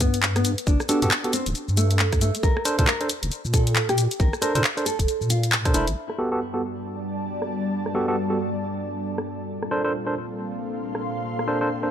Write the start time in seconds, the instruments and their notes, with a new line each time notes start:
Already playing: wobble bass G2
0.00 nylon-string guitar B3, kick, closed hi-hat, shaker
0.14 closed hi-hat, shaker
0.23 clap, shaker
0.36 nylon-string guitar B3, cross-stick, closed hi-hat, shaker
0.45 closed hi-hat, shaker
0.58 closed hi-hat, shaker
0.67 wobble bass G1, nylon-string guitar D4, kick, shaker
0.80 cross-stick, shaker
0.89 tine electric piano B3 F#4 G4 A4, nylon-string guitar D4, closed hi-hat, shaker
1.02 wobble bass G2, tine electric piano B3 F#4 G4 A4, closed hi-hat, shaker
1.11 clap, shaker
1.24 tine electric piano B3 F#4 G4 A4, closed hi-hat
1.33 nylon-string guitar C4, closed hi-hat, shaker
1.46 wobble bass D1, closed hi-hat, shaker
1.55 closed hi-hat, shaker
1.68 wobble bass G2, shaker
1.77 nylon-string guitar A3, closed hi-hat, shaker
1.91 closed hi-hat, shaker
1.99 clap, shaker
2.12 kick, cross-stick, closed hi-hat, shaker
2.21 nylon-string guitar A3, closed hi-hat, shaker
2.35 closed hi-hat, shaker
2.43 wobble bass A#1, nylon-string guitar A#4, kick, shaker
2.57 cross-stick
2.65 tine electric piano D4 A4 A#4 C5, closed hi-hat, shaker
2.79 wobble bass A#2, tine electric piano D4 A4 A#4 C5, kick, closed hi-hat, shaker
2.87 nylon-string guitar A#4, clap, shaker
3.01 tine electric piano D4 A4 A#4 C5, closed hi-hat
3.09 closed hi-hat, shaker
3.23 wobble bass F1, closed hi-hat, shaker
3.32 closed hi-hat, shaker
3.45 wobble bass A#2, shaker
3.53 nylon-string guitar A4, kick, closed hi-hat, shaker
3.67 closed hi-hat, shaker
3.76 clap, shaker
3.89 nylon-string guitar G4, cross-stick, closed hi-hat, shaker
3.98 closed hi-hat, shaker
4.11 closed hi-hat, shaker
4.20 wobble bass A#1, nylon-string guitar A#4, kick, shaker
4.33 cross-stick, shaker
4.42 tine electric piano D4 A4 A#4 C5, nylon-string guitar A#4, closed hi-hat, shaker
4.55 wobble bass A#2, tine electric piano D4 A4 A#4 C5, closed hi-hat, shaker
4.64 clap, shaker
4.77 tine electric piano D4 A4 A#4 C5, closed hi-hat, shaker
4.86 nylon-string guitar A4, closed hi-hat, shaker
4.99 wobble bass F1, kick, closed hi-hat, shaker
5.08 closed hi-hat, shaker
5.21 wobble bass A#2, shaker
5.30 nylon-string guitar F4, closed hi-hat, shaker
5.43 closed hi-hat, shaker
5.52 clap, shaker
5.65 tine electric piano D4 A4 A#4 C5, kick, cross-stick, closed hi-hat, shaker
5.74 wobble bass F1, tine electric piano D4 A4 A#4 C5, nylon-string guitar E4, closed hi-hat, shaker
5.87 wobble bass A#1, closed hi-hat, shaker
5.96 analog synth pad G2 B3 D4 F#4 A4, ambient pad G3
6.10 cross-stick
6.15 tine electric piano B3 F#4 G4 A4, ambient pad A5
6.32 tine electric piano B3 F#4 G4 A4, ambient pad D5
6.54 tine electric piano B3 F#4 G4 A4
7.42 cross-stick
7.86 cross-stick
7.95 tine electric piano B3 F#4 G4 A4
8.08 tine electric piano B3 F#4 G4 A4
8.30 tine electric piano B3 F#4 G4 A4
9.18 cross-stick
9.49 analog synth pad A#2 C4 D4 F4, ambient pad A#3
9.63 cross-stick
9.71 tine electric piano D4 A4 A#4 C5
9.84 tine electric piano D4 A4 A#4 C5
10.07 tine electric piano D4 A4 A#4 C5, ambient pad F5
10.16 ambient pad C6
10.95 cross-stick
11.26 analog synth pad G4
11.39 cross-stick
11.48 tine electric piano D4 A4 A#4 C5
11.61 tine electric piano D4 A4 A#4 C5
11.83 tine electric piano D4 A4 A#4 C5